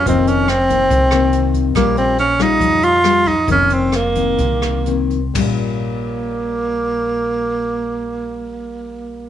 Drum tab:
CC |--------|--------|--------|x-------|
HH |xxxxxxxx|xxxxxxxx|xxxxxxxx|--------|
SD |--r--r--|r--r--r-|--r--r--|--------|
FT |--------|--------|--------|o-------|
BD |o--oo--o|o--oo--o|o--oo--o|o-------|

CC |--------|
HH |--------|
SD |--------|
FT |--------|
BD |--------|